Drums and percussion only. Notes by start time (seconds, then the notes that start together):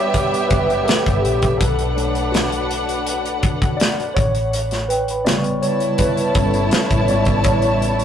0.14 kick, closed hi-hat
0.34 closed hi-hat
0.50 kick, closed hi-hat
0.70 closed hi-hat
0.88 snare, closed hi-hat
1.06 kick, closed hi-hat
1.25 closed hi-hat
1.42 kick, closed hi-hat
1.61 kick, closed hi-hat
1.79 closed hi-hat
1.98 closed hi-hat
2.15 closed hi-hat
2.34 snare, closed hi-hat
2.52 closed hi-hat
2.71 closed hi-hat
2.89 closed hi-hat
3.07 closed hi-hat
3.26 closed hi-hat
3.43 kick, closed hi-hat
3.62 kick, closed hi-hat
3.80 snare, closed hi-hat
4.00 closed hi-hat
4.17 kick, closed hi-hat
4.35 closed hi-hat
4.53 closed hi-hat
4.71 snare, closed hi-hat
4.90 closed hi-hat
5.08 closed hi-hat
5.26 snare, closed hi-hat
5.44 closed hi-hat
5.63 closed hi-hat
5.80 closed hi-hat
5.98 kick, closed hi-hat
6.17 closed hi-hat
6.35 kick, closed hi-hat
6.54 closed hi-hat
6.71 snare, closed hi-hat
6.91 kick, closed hi-hat
7.08 closed hi-hat
7.25 kick, closed hi-hat
7.44 kick, closed hi-hat
7.62 closed hi-hat
7.82 closed hi-hat
7.99 closed hi-hat